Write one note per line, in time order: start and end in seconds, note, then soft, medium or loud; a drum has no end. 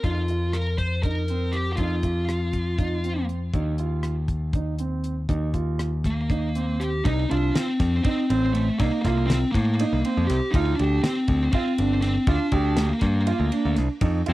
0.03 1.75 F2 medium
0.03 0.22 D#4 medium
0.03 0.56 F4 medium
0.03 kick medium
0.03 closed hi-hat medium
0.28 0.63 F4 medium
0.28 closed hi-hat soft
0.53 0.78 A#4 medium
0.53 cross-stick medium
0.53 closed hi-hat medium
0.78 1.02 C5 medium
0.78 kick medium
0.78 closed hi-hat soft
1.03 1.22 D#4 medium
1.03 1.55 A#4 medium
1.03 kick medium
1.03 closed hi-hat medium
1.28 1.63 C4 medium
1.28 closed hi-hat medium
1.52 1.71 G4 medium
1.52 closed hi-hat soft
1.72 1.76 G4 soft
1.77 3.51 F2 medium
1.77 1.97 D#4 medium
1.77 3.24 F4 medium
1.77 kick medium
1.77 closed hi-hat medium
2.03 2.38 F4 medium
2.03 kick medium
2.03 closed hi-hat soft
2.29 cross-stick medium
2.29 closed hi-hat medium
2.53 kick medium
2.53 closed hi-hat soft
2.79 2.96 D#4 medium
2.79 kick medium
2.79 closed hi-hat medium
3.04 3.38 C4 medium
3.04 closed hi-hat soft
3.29 closed hi-hat soft
3.54 5.26 D#2 medium
3.54 3.72 D#4 medium
3.54 kick medium
3.54 closed hi-hat medium
3.78 4.13 F4 medium
3.78 closed hi-hat soft
4.03 cross-stick medium
4.03 closed hi-hat medium
4.28 kick medium
4.28 closed hi-hat soft
4.53 4.72 D#4 medium
4.53 kick medium
4.53 closed hi-hat medium
4.79 5.13 C4 medium
4.79 closed hi-hat medium
5.04 closed hi-hat soft
5.29 7.01 D#2 medium
5.29 5.46 D#4 medium
5.29 kick medium
5.29 closed hi-hat medium
5.54 5.88 F4 medium
5.54 kick soft
5.54 closed hi-hat soft
5.79 cross-stick medium
5.79 closed hi-hat medium
6.04 6.83 A#3 medium
6.04 kick medium
6.04 closed hi-hat soft
6.30 6.47 D#4 medium
6.30 kick medium
6.30 closed hi-hat medium
6.55 6.89 C4 medium
6.55 closed hi-hat medium
6.80 7.06 G4 medium
6.80 closed hi-hat medium
7.04 7.25 C2 medium
7.04 7.30 D#4 loud
7.04 7.22 D#4 medium
7.04 kick loud
7.04 ride medium
7.30 7.50 C2 medium
7.30 7.56 D4 loud
7.30 7.64 F4 medium
7.30 ride medium
7.54 8.02 C4 medium
7.54 snare loud
7.54 ride medium
7.80 7.99 F2 medium
7.80 kick medium
7.80 snare soft
7.80 ride medium
8.04 8.53 C4 medium
8.04 8.22 D#4 medium
8.04 kick medium
8.04 ride medium
8.30 8.69 A1 medium
8.30 8.64 C4 medium
8.30 ride medium
8.54 8.79 A3 medium
8.54 ride medium
8.79 8.90 C2 medium
8.79 9.01 A#3 loud
8.79 8.97 D#4 medium
8.79 kick loud
8.79 ride medium
9.02 9.43 C2 medium
9.02 9.26 A#3 medium
9.02 9.39 F4 medium
9.02 kick medium
9.02 snare soft
9.02 ride medium
9.27 9.51 C4 medium
9.27 snare loud
9.27 ride medium
9.52 9.84 A2 medium
9.52 10.24 A#3 medium
9.52 kick medium
9.52 ride medium
9.79 9.97 D#4 medium
9.79 ride medium
9.93 10.02 C2 medium
10.05 10.38 C4 medium
10.05 ride medium
10.17 10.27 F2 medium
10.27 10.39 C2 loud
10.27 10.54 G4 medium
10.27 snare soft
10.27 ride medium
10.51 10.73 D2 medium
10.51 10.76 D#4 loud
10.51 kick loud
10.51 ride medium
10.55 10.72 F4 medium
10.76 10.99 D2 medium
10.76 11.03 D4 medium
10.76 11.13 G4 medium
10.76 ride medium
11.02 11.51 C4 medium
11.02 snare loud
11.02 ride medium
11.28 11.48 D2 medium
11.28 kick medium
11.28 ride medium
11.52 12.01 C4 medium
11.52 11.71 F4 medium
11.52 kick loud
11.52 ride medium
11.78 12.17 G1 medium
11.78 12.12 D4 medium
11.78 ride medium
12.02 12.28 C4 medium
12.02 snare soft
12.02 ride medium
12.27 12.37 D2 medium
12.27 12.80 D4 medium
12.27 12.45 F4 medium
12.27 kick loud
12.27 ride medium
12.52 12.91 D2 loud
12.52 12.86 G4 medium
12.52 kick medium
12.52 ride medium
12.77 13.74 A#3 medium
12.77 snare loud
12.77 ride medium
13.01 13.31 G2 medium
13.01 kick medium
13.01 snare soft
13.01 ride medium
13.27 13.44 F4 medium
13.27 ride medium
13.40 13.49 D2 medium
13.52 13.86 D4 medium
13.52 ride medium
13.65 13.75 D2 medium
13.76 13.87 C2 loud
13.76 snare soft
13.76 ride medium
14.01 14.21 F2 medium
14.01 14.18 D#4 medium
14.01 kick loud
14.01 ride medium
14.26 14.33 F2 medium
14.26 14.33 C4 medium
14.26 14.33 F4 medium
14.26 ride medium